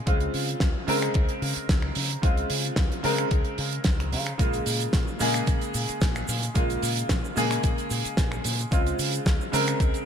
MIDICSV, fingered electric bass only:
0, 0, Header, 1, 3, 480
1, 0, Start_track
1, 0, Tempo, 540541
1, 61, Time_signature, 4, 2, 24, 8
1, 8927, End_track
2, 0, Start_track
2, 0, Title_t, "Fingered electric bass"
2, 0, Program_c, 0, 33
2, 63, Note_on_c, 0, 37, 95
2, 235, Note_off_c, 0, 37, 0
2, 302, Note_on_c, 0, 49, 81
2, 475, Note_off_c, 0, 49, 0
2, 543, Note_on_c, 0, 37, 93
2, 632, Note_off_c, 0, 37, 0
2, 779, Note_on_c, 0, 49, 86
2, 954, Note_off_c, 0, 49, 0
2, 1023, Note_on_c, 0, 37, 84
2, 1112, Note_off_c, 0, 37, 0
2, 1260, Note_on_c, 0, 49, 80
2, 1350, Note_off_c, 0, 49, 0
2, 1502, Note_on_c, 0, 37, 96
2, 1675, Note_off_c, 0, 37, 0
2, 1740, Note_on_c, 0, 49, 85
2, 1914, Note_off_c, 0, 49, 0
2, 1983, Note_on_c, 0, 37, 98
2, 2156, Note_off_c, 0, 37, 0
2, 2219, Note_on_c, 0, 49, 82
2, 2394, Note_off_c, 0, 49, 0
2, 2462, Note_on_c, 0, 37, 96
2, 2551, Note_off_c, 0, 37, 0
2, 2701, Note_on_c, 0, 49, 87
2, 2875, Note_off_c, 0, 49, 0
2, 2942, Note_on_c, 0, 37, 90
2, 3031, Note_off_c, 0, 37, 0
2, 3182, Note_on_c, 0, 49, 82
2, 3355, Note_off_c, 0, 49, 0
2, 3422, Note_on_c, 0, 37, 79
2, 3661, Note_on_c, 0, 49, 93
2, 3674, Note_off_c, 0, 37, 0
2, 3835, Note_off_c, 0, 49, 0
2, 3902, Note_on_c, 0, 34, 96
2, 4075, Note_off_c, 0, 34, 0
2, 4141, Note_on_c, 0, 46, 80
2, 4315, Note_off_c, 0, 46, 0
2, 4382, Note_on_c, 0, 34, 95
2, 4471, Note_off_c, 0, 34, 0
2, 4621, Note_on_c, 0, 46, 90
2, 4795, Note_off_c, 0, 46, 0
2, 4862, Note_on_c, 0, 34, 86
2, 4952, Note_off_c, 0, 34, 0
2, 5102, Note_on_c, 0, 46, 81
2, 5192, Note_off_c, 0, 46, 0
2, 5341, Note_on_c, 0, 34, 94
2, 5515, Note_off_c, 0, 34, 0
2, 5580, Note_on_c, 0, 46, 82
2, 5754, Note_off_c, 0, 46, 0
2, 5823, Note_on_c, 0, 34, 98
2, 5996, Note_off_c, 0, 34, 0
2, 6062, Note_on_c, 0, 46, 81
2, 6235, Note_off_c, 0, 46, 0
2, 6302, Note_on_c, 0, 34, 98
2, 6391, Note_off_c, 0, 34, 0
2, 6542, Note_on_c, 0, 46, 89
2, 6715, Note_off_c, 0, 46, 0
2, 6784, Note_on_c, 0, 34, 91
2, 6872, Note_off_c, 0, 34, 0
2, 7022, Note_on_c, 0, 46, 76
2, 7111, Note_off_c, 0, 46, 0
2, 7262, Note_on_c, 0, 34, 94
2, 7435, Note_off_c, 0, 34, 0
2, 7502, Note_on_c, 0, 46, 79
2, 7675, Note_off_c, 0, 46, 0
2, 7743, Note_on_c, 0, 37, 101
2, 7916, Note_off_c, 0, 37, 0
2, 7982, Note_on_c, 0, 49, 78
2, 8155, Note_off_c, 0, 49, 0
2, 8224, Note_on_c, 0, 37, 95
2, 8312, Note_off_c, 0, 37, 0
2, 8464, Note_on_c, 0, 49, 88
2, 8636, Note_off_c, 0, 49, 0
2, 8704, Note_on_c, 0, 37, 88
2, 8792, Note_off_c, 0, 37, 0
2, 8927, End_track
3, 0, Start_track
3, 0, Title_t, "Muted fingered electric bass strokes"
3, 1387, Note_on_c, 9, 29, 43
3, 1475, Note_off_c, 9, 29, 0
3, 5230, Note_on_c, 9, 29, 42
3, 5318, Note_off_c, 9, 29, 0
3, 7149, Note_on_c, 9, 29, 42
3, 7238, Note_off_c, 9, 29, 0
3, 8927, End_track
0, 0, End_of_file